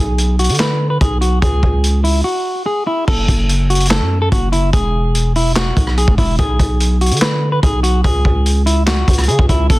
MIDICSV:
0, 0, Header, 1, 4, 480
1, 0, Start_track
1, 0, Key_signature, 3, "minor"
1, 0, Tempo, 413793
1, 1651, Time_signature, 4, 2, 24, 8
1, 11358, End_track
2, 0, Start_track
2, 0, Title_t, "Clean electric guitar"
2, 0, Program_c, 0, 27
2, 0, Note_on_c, 0, 68, 86
2, 408, Note_off_c, 0, 68, 0
2, 456, Note_on_c, 0, 66, 75
2, 656, Note_off_c, 0, 66, 0
2, 695, Note_on_c, 0, 71, 91
2, 1031, Note_off_c, 0, 71, 0
2, 1046, Note_on_c, 0, 71, 79
2, 1149, Note_off_c, 0, 71, 0
2, 1173, Note_on_c, 0, 68, 88
2, 1374, Note_off_c, 0, 68, 0
2, 1406, Note_on_c, 0, 66, 80
2, 1610, Note_off_c, 0, 66, 0
2, 1648, Note_on_c, 0, 68, 102
2, 2326, Note_off_c, 0, 68, 0
2, 2366, Note_on_c, 0, 64, 73
2, 2570, Note_off_c, 0, 64, 0
2, 2601, Note_on_c, 0, 66, 91
2, 3057, Note_off_c, 0, 66, 0
2, 3087, Note_on_c, 0, 68, 90
2, 3291, Note_off_c, 0, 68, 0
2, 3329, Note_on_c, 0, 64, 79
2, 3532, Note_off_c, 0, 64, 0
2, 3571, Note_on_c, 0, 69, 100
2, 4247, Note_off_c, 0, 69, 0
2, 4293, Note_on_c, 0, 66, 76
2, 4494, Note_off_c, 0, 66, 0
2, 4527, Note_on_c, 0, 69, 92
2, 4867, Note_off_c, 0, 69, 0
2, 4892, Note_on_c, 0, 69, 94
2, 4993, Note_off_c, 0, 69, 0
2, 5015, Note_on_c, 0, 66, 88
2, 5215, Note_off_c, 0, 66, 0
2, 5247, Note_on_c, 0, 64, 86
2, 5451, Note_off_c, 0, 64, 0
2, 5489, Note_on_c, 0, 68, 101
2, 6167, Note_off_c, 0, 68, 0
2, 6217, Note_on_c, 0, 64, 78
2, 6417, Note_off_c, 0, 64, 0
2, 6448, Note_on_c, 0, 66, 87
2, 6900, Note_off_c, 0, 66, 0
2, 6934, Note_on_c, 0, 68, 99
2, 7135, Note_off_c, 0, 68, 0
2, 7169, Note_on_c, 0, 64, 75
2, 7372, Note_off_c, 0, 64, 0
2, 7411, Note_on_c, 0, 68, 92
2, 8088, Note_off_c, 0, 68, 0
2, 8135, Note_on_c, 0, 66, 81
2, 8335, Note_off_c, 0, 66, 0
2, 8376, Note_on_c, 0, 71, 93
2, 8712, Note_off_c, 0, 71, 0
2, 8725, Note_on_c, 0, 71, 85
2, 8829, Note_off_c, 0, 71, 0
2, 8853, Note_on_c, 0, 68, 88
2, 9054, Note_off_c, 0, 68, 0
2, 9086, Note_on_c, 0, 66, 85
2, 9290, Note_off_c, 0, 66, 0
2, 9330, Note_on_c, 0, 68, 102
2, 10007, Note_off_c, 0, 68, 0
2, 10047, Note_on_c, 0, 64, 78
2, 10251, Note_off_c, 0, 64, 0
2, 10282, Note_on_c, 0, 66, 94
2, 10737, Note_off_c, 0, 66, 0
2, 10768, Note_on_c, 0, 68, 96
2, 10971, Note_off_c, 0, 68, 0
2, 11010, Note_on_c, 0, 64, 80
2, 11213, Note_off_c, 0, 64, 0
2, 11253, Note_on_c, 0, 69, 100
2, 11358, Note_off_c, 0, 69, 0
2, 11358, End_track
3, 0, Start_track
3, 0, Title_t, "808-style bass"
3, 0, Program_c, 1, 38
3, 0, Note_on_c, 1, 35, 104
3, 571, Note_on_c, 1, 50, 100
3, 588, Note_off_c, 1, 35, 0
3, 1141, Note_off_c, 1, 50, 0
3, 1171, Note_on_c, 1, 35, 108
3, 1632, Note_off_c, 1, 35, 0
3, 1650, Note_on_c, 1, 37, 111
3, 1881, Note_off_c, 1, 37, 0
3, 1890, Note_on_c, 1, 37, 104
3, 2581, Note_off_c, 1, 37, 0
3, 3570, Note_on_c, 1, 30, 115
3, 3801, Note_off_c, 1, 30, 0
3, 3809, Note_on_c, 1, 30, 107
3, 4650, Note_on_c, 1, 42, 98
3, 4667, Note_off_c, 1, 30, 0
3, 4992, Note_off_c, 1, 42, 0
3, 5011, Note_on_c, 1, 30, 108
3, 5472, Note_off_c, 1, 30, 0
3, 5490, Note_on_c, 1, 28, 111
3, 6644, Note_off_c, 1, 28, 0
3, 6690, Note_on_c, 1, 35, 106
3, 7036, Note_off_c, 1, 35, 0
3, 7050, Note_on_c, 1, 28, 106
3, 7163, Note_off_c, 1, 28, 0
3, 7170, Note_on_c, 1, 28, 105
3, 7400, Note_off_c, 1, 28, 0
3, 7410, Note_on_c, 1, 35, 113
3, 7641, Note_off_c, 1, 35, 0
3, 7650, Note_on_c, 1, 35, 110
3, 8251, Note_on_c, 1, 50, 103
3, 8268, Note_off_c, 1, 35, 0
3, 8821, Note_off_c, 1, 50, 0
3, 8851, Note_on_c, 1, 35, 110
3, 9312, Note_off_c, 1, 35, 0
3, 9331, Note_on_c, 1, 37, 113
3, 9561, Note_off_c, 1, 37, 0
3, 9570, Note_on_c, 1, 37, 104
3, 10492, Note_off_c, 1, 37, 0
3, 10530, Note_on_c, 1, 37, 111
3, 10771, Note_on_c, 1, 49, 100
3, 10788, Note_off_c, 1, 37, 0
3, 10885, Note_off_c, 1, 49, 0
3, 10890, Note_on_c, 1, 37, 109
3, 11003, Note_off_c, 1, 37, 0
3, 11010, Note_on_c, 1, 37, 105
3, 11241, Note_off_c, 1, 37, 0
3, 11250, Note_on_c, 1, 30, 116
3, 11358, Note_off_c, 1, 30, 0
3, 11358, End_track
4, 0, Start_track
4, 0, Title_t, "Drums"
4, 210, Note_on_c, 9, 42, 83
4, 326, Note_off_c, 9, 42, 0
4, 451, Note_on_c, 9, 42, 49
4, 511, Note_off_c, 9, 42, 0
4, 511, Note_on_c, 9, 42, 61
4, 571, Note_off_c, 9, 42, 0
4, 571, Note_on_c, 9, 42, 70
4, 630, Note_off_c, 9, 42, 0
4, 630, Note_on_c, 9, 42, 81
4, 691, Note_on_c, 9, 38, 109
4, 693, Note_on_c, 9, 39, 88
4, 746, Note_off_c, 9, 42, 0
4, 807, Note_off_c, 9, 38, 0
4, 809, Note_off_c, 9, 39, 0
4, 1171, Note_on_c, 9, 36, 106
4, 1171, Note_on_c, 9, 42, 70
4, 1287, Note_off_c, 9, 36, 0
4, 1287, Note_off_c, 9, 42, 0
4, 1409, Note_on_c, 9, 42, 72
4, 1525, Note_off_c, 9, 42, 0
4, 1650, Note_on_c, 9, 36, 104
4, 1650, Note_on_c, 9, 42, 78
4, 1766, Note_off_c, 9, 36, 0
4, 1766, Note_off_c, 9, 42, 0
4, 1890, Note_on_c, 9, 36, 86
4, 2006, Note_off_c, 9, 36, 0
4, 2130, Note_on_c, 9, 42, 82
4, 2246, Note_off_c, 9, 42, 0
4, 2371, Note_on_c, 9, 46, 61
4, 2487, Note_off_c, 9, 46, 0
4, 3570, Note_on_c, 9, 36, 107
4, 3570, Note_on_c, 9, 49, 103
4, 3686, Note_off_c, 9, 36, 0
4, 3686, Note_off_c, 9, 49, 0
4, 3809, Note_on_c, 9, 36, 93
4, 3809, Note_on_c, 9, 42, 79
4, 3925, Note_off_c, 9, 36, 0
4, 3925, Note_off_c, 9, 42, 0
4, 4049, Note_on_c, 9, 42, 85
4, 4165, Note_off_c, 9, 42, 0
4, 4291, Note_on_c, 9, 42, 50
4, 4350, Note_off_c, 9, 42, 0
4, 4350, Note_on_c, 9, 42, 63
4, 4410, Note_off_c, 9, 42, 0
4, 4410, Note_on_c, 9, 42, 70
4, 4470, Note_off_c, 9, 42, 0
4, 4470, Note_on_c, 9, 42, 82
4, 4530, Note_on_c, 9, 38, 110
4, 4532, Note_on_c, 9, 39, 91
4, 4586, Note_off_c, 9, 42, 0
4, 4646, Note_off_c, 9, 38, 0
4, 4648, Note_off_c, 9, 39, 0
4, 5010, Note_on_c, 9, 42, 72
4, 5011, Note_on_c, 9, 36, 109
4, 5126, Note_off_c, 9, 42, 0
4, 5127, Note_off_c, 9, 36, 0
4, 5248, Note_on_c, 9, 42, 73
4, 5364, Note_off_c, 9, 42, 0
4, 5490, Note_on_c, 9, 36, 108
4, 5490, Note_on_c, 9, 42, 83
4, 5606, Note_off_c, 9, 36, 0
4, 5606, Note_off_c, 9, 42, 0
4, 5970, Note_on_c, 9, 42, 86
4, 6086, Note_off_c, 9, 42, 0
4, 6210, Note_on_c, 9, 46, 62
4, 6326, Note_off_c, 9, 46, 0
4, 6448, Note_on_c, 9, 42, 79
4, 6450, Note_on_c, 9, 38, 113
4, 6453, Note_on_c, 9, 39, 91
4, 6564, Note_off_c, 9, 42, 0
4, 6566, Note_off_c, 9, 38, 0
4, 6569, Note_off_c, 9, 39, 0
4, 6690, Note_on_c, 9, 36, 108
4, 6691, Note_on_c, 9, 42, 73
4, 6806, Note_off_c, 9, 36, 0
4, 6807, Note_off_c, 9, 42, 0
4, 6810, Note_on_c, 9, 37, 96
4, 6926, Note_off_c, 9, 37, 0
4, 6929, Note_on_c, 9, 42, 73
4, 7045, Note_off_c, 9, 42, 0
4, 7050, Note_on_c, 9, 36, 97
4, 7166, Note_off_c, 9, 36, 0
4, 7168, Note_on_c, 9, 46, 54
4, 7170, Note_on_c, 9, 36, 97
4, 7284, Note_off_c, 9, 46, 0
4, 7286, Note_off_c, 9, 36, 0
4, 7410, Note_on_c, 9, 36, 111
4, 7410, Note_on_c, 9, 42, 82
4, 7526, Note_off_c, 9, 36, 0
4, 7526, Note_off_c, 9, 42, 0
4, 7650, Note_on_c, 9, 36, 91
4, 7650, Note_on_c, 9, 42, 76
4, 7766, Note_off_c, 9, 36, 0
4, 7766, Note_off_c, 9, 42, 0
4, 7890, Note_on_c, 9, 42, 89
4, 8006, Note_off_c, 9, 42, 0
4, 8130, Note_on_c, 9, 42, 50
4, 8190, Note_off_c, 9, 42, 0
4, 8190, Note_on_c, 9, 42, 64
4, 8250, Note_off_c, 9, 42, 0
4, 8250, Note_on_c, 9, 42, 69
4, 8310, Note_off_c, 9, 42, 0
4, 8310, Note_on_c, 9, 42, 82
4, 8370, Note_on_c, 9, 38, 111
4, 8372, Note_on_c, 9, 39, 93
4, 8426, Note_off_c, 9, 42, 0
4, 8486, Note_off_c, 9, 38, 0
4, 8488, Note_off_c, 9, 39, 0
4, 8850, Note_on_c, 9, 42, 74
4, 8851, Note_on_c, 9, 36, 107
4, 8966, Note_off_c, 9, 42, 0
4, 8967, Note_off_c, 9, 36, 0
4, 9089, Note_on_c, 9, 42, 73
4, 9205, Note_off_c, 9, 42, 0
4, 9330, Note_on_c, 9, 36, 110
4, 9331, Note_on_c, 9, 42, 78
4, 9446, Note_off_c, 9, 36, 0
4, 9447, Note_off_c, 9, 42, 0
4, 9570, Note_on_c, 9, 36, 92
4, 9686, Note_off_c, 9, 36, 0
4, 9810, Note_on_c, 9, 42, 85
4, 9926, Note_off_c, 9, 42, 0
4, 10051, Note_on_c, 9, 42, 81
4, 10167, Note_off_c, 9, 42, 0
4, 10289, Note_on_c, 9, 42, 77
4, 10291, Note_on_c, 9, 38, 115
4, 10293, Note_on_c, 9, 39, 87
4, 10405, Note_off_c, 9, 42, 0
4, 10407, Note_off_c, 9, 38, 0
4, 10409, Note_off_c, 9, 39, 0
4, 10530, Note_on_c, 9, 36, 107
4, 10531, Note_on_c, 9, 42, 74
4, 10591, Note_off_c, 9, 42, 0
4, 10591, Note_on_c, 9, 42, 66
4, 10646, Note_off_c, 9, 36, 0
4, 10651, Note_off_c, 9, 42, 0
4, 10651, Note_on_c, 9, 37, 97
4, 10651, Note_on_c, 9, 42, 55
4, 10711, Note_off_c, 9, 42, 0
4, 10711, Note_on_c, 9, 42, 45
4, 10767, Note_off_c, 9, 37, 0
4, 10770, Note_off_c, 9, 42, 0
4, 10770, Note_on_c, 9, 42, 75
4, 10886, Note_off_c, 9, 42, 0
4, 10890, Note_on_c, 9, 36, 102
4, 11006, Note_off_c, 9, 36, 0
4, 11008, Note_on_c, 9, 42, 74
4, 11010, Note_on_c, 9, 36, 96
4, 11124, Note_off_c, 9, 42, 0
4, 11126, Note_off_c, 9, 36, 0
4, 11250, Note_on_c, 9, 36, 108
4, 11251, Note_on_c, 9, 42, 84
4, 11358, Note_off_c, 9, 36, 0
4, 11358, Note_off_c, 9, 42, 0
4, 11358, End_track
0, 0, End_of_file